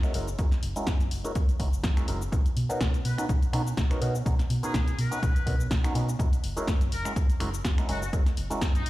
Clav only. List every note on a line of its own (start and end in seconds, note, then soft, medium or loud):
0.03 0.13 G#3 medium
0.03 0.13 C#4 medium
0.03 0.13 E4 medium
0.03 0.13 F#4 medium
0.03 0.13 A#4 medium
0.14 0.28 G#3 medium
0.14 0.28 C#4 medium
0.14 0.28 E4 medium
0.14 0.28 F#4 medium
0.14 0.28 A#4 medium
0.38 0.47 G#3 medium
0.38 0.47 C#4 medium
0.38 0.47 E4 medium
0.38 0.47 F#4 medium
0.38 0.48 A#4 medium
0.76 0.88 G#3 medium
0.76 0.88 C#4 medium
0.76 0.88 E4 medium
0.76 0.88 F#4 medium
0.76 0.88 A#4 loud
1.24 1.32 G#3 medium
1.24 1.32 C#4 medium
1.24 1.32 E4 medium
1.24 1.32 F#4 medium
1.24 1.32 A#4 loud
1.59 1.68 G#3 medium
1.59 1.68 C#4 medium
1.59 1.68 E4 medium
1.59 1.68 F#4 medium
1.59 1.69 A#4 medium
1.97 2.06 G#3 medium
1.97 2.06 C#4 medium
1.97 2.06 E4 medium
1.97 2.07 F#4 medium
1.97 2.07 A#4 medium
2.08 2.22 G#3 medium
2.08 2.22 C#4 medium
2.08 2.22 E4 medium
2.08 2.22 F#4 medium
2.08 2.22 A#4 medium
2.32 2.41 B3 medium
2.32 2.41 C#4 medium
2.32 2.41 D#4 medium
2.32 2.41 F#4 medium
2.32 2.41 A#4 medium
2.69 2.81 B3 medium
2.69 2.81 C#4 medium
2.69 2.81 D#4 medium
2.69 2.81 F#4 medium
2.69 2.81 A#4 loud
3.18 3.25 B3 medium
3.18 3.25 C#4 medium
3.18 3.25 D#4 medium
3.18 3.25 F#4 medium
3.18 3.26 A#4 medium
3.53 3.62 B3 medium
3.53 3.62 C#4 medium
3.53 3.62 D#4 medium
3.53 3.62 F#4 medium
3.53 3.62 A#4 loud
3.90 4.00 B3 medium
3.90 4.00 C#4 medium
3.90 4.00 D#4 medium
3.90 4.00 F#4 medium
3.90 4.00 A#4 medium
4.01 4.15 B3 medium
4.01 4.15 C#4 medium
4.01 4.15 D#4 medium
4.01 4.15 F#4 medium
4.01 4.15 A#4 medium
4.26 4.34 B3 medium
4.26 4.34 C#4 medium
4.26 4.35 D#4 medium
4.26 4.35 F#4 medium
4.26 4.35 A#4 medium
4.63 4.75 B3 medium
4.63 4.75 C#4 medium
4.63 4.75 D#4 medium
4.63 4.75 F#4 medium
4.63 4.75 A#4 loud
5.11 5.19 B3 medium
5.11 5.19 C#4 medium
5.11 5.19 D#4 medium
5.11 5.19 F#4 medium
5.11 5.19 A#4 medium
5.46 5.55 B3 medium
5.46 5.55 C#4 medium
5.46 5.55 D#4 medium
5.46 5.56 F#4 medium
5.46 5.56 A#4 loud
5.84 5.93 B3 medium
5.84 5.93 C#4 medium
5.84 5.94 D#4 medium
5.84 5.94 F#4 medium
5.84 5.94 A#4 medium
5.95 6.09 B3 medium
5.95 6.09 C#4 medium
5.95 6.09 D#4 medium
5.95 6.09 F#4 medium
5.95 6.09 A#4 medium
6.19 6.28 G#3 medium
6.19 6.28 C#4 medium
6.19 6.28 E4 medium
6.19 6.28 F#4 medium
6.19 6.28 A#4 medium
6.56 6.68 G#3 medium
6.56 6.68 C#4 medium
6.56 6.68 E4 medium
6.56 6.68 F#4 medium
6.56 6.69 A#4 loud
7.05 7.12 G#3 medium
7.05 7.12 C#4 medium
7.05 7.13 E4 medium
7.05 7.13 F#4 medium
7.05 7.13 A#4 loud
7.40 7.49 G#3 medium
7.40 7.49 C#4 medium
7.40 7.49 E4 medium
7.40 7.49 F#4 medium
7.40 7.49 A#4 loud
7.78 7.87 G#3 medium
7.78 7.87 C#4 medium
7.78 7.87 E4 medium
7.78 7.88 F#4 medium
7.78 7.88 A#4 medium
7.88 8.02 G#3 medium
7.88 8.02 C#4 medium
7.88 8.03 E4 medium
7.88 8.03 F#4 medium
7.88 8.03 A#4 medium
8.13 8.21 G#3 medium
8.13 8.22 C#4 medium
8.13 8.22 E4 medium
8.13 8.22 F#4 medium
8.13 8.22 A#4 medium
8.50 8.62 G#3 medium
8.50 8.62 C#4 medium
8.50 8.62 E4 medium
8.50 8.62 F#4 medium
8.50 8.62 A#4 loud